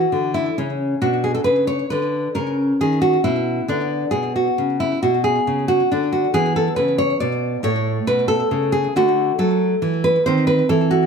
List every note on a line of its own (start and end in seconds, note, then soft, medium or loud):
0.00 0.33 F#4 medium
0.12 0.48 D3 medium
0.34 0.56 E4 medium
0.58 0.94 C#3 medium
0.58 1.00 C#4 medium
1.02 1.37 B2 medium
1.02 2.32 D4 soft
1.02 1.23 F#4 medium
1.24 1.34 G#4 medium
1.34 1.44 A4 medium
1.44 1.82 C#3 medium
1.44 1.67 B4 medium
1.67 1.90 C#5 medium
1.90 2.27 D3 medium
1.90 2.34 B4 medium
2.35 2.72 C#3 medium
2.35 3.65 C#4 soft
2.35 2.78 A#4 medium
2.81 3.16 D#3 medium
2.81 3.01 G#4 medium
3.02 3.24 F#4 medium
3.24 3.60 B2 medium
3.24 3.67 E4 medium
3.68 4.04 D3 medium
3.68 6.29 B3 soft
3.68 4.11 D4 medium
4.11 4.48 B2 medium
4.11 4.34 G#4 medium
4.36 4.78 F#4 medium
4.58 4.93 C#3 medium
4.80 5.01 E4 medium
5.03 5.38 B2 medium
5.03 5.23 F#4 medium
5.24 5.66 G#4 medium
5.47 5.81 C#3 medium
5.68 5.89 F#4 medium
5.92 6.26 D3 medium
5.92 6.11 D4 medium
6.13 6.33 F#4 medium
6.34 6.68 E3 medium
6.34 7.60 B3 soft
6.34 6.54 G#4 medium
6.56 6.76 A4 medium
6.76 7.12 C#3 medium
6.76 6.97 B4 medium
6.98 7.19 C#5 medium
7.20 7.56 B2 medium
7.20 7.62 D5 medium
7.63 7.98 A2 medium
7.63 8.91 A3 soft
7.63 8.05 C#5 medium
8.07 8.43 B2 medium
8.07 8.28 B4 medium
8.28 8.71 A4 medium
8.51 8.87 C#3 medium
8.72 8.94 G#4 medium
8.96 9.31 D3 medium
8.96 10.23 A3 soft
8.96 9.38 F#4 medium
9.39 9.74 F#3 medium
9.39 10.02 A4 medium
9.82 10.17 E3 medium
10.04 10.25 B4 medium
10.26 10.62 D#3 medium
10.26 11.06 C4 soft
10.26 10.47 C5 medium
10.47 10.69 B4 medium
10.69 11.05 E3 medium
10.69 10.90 A4 medium
10.91 11.06 F#4 medium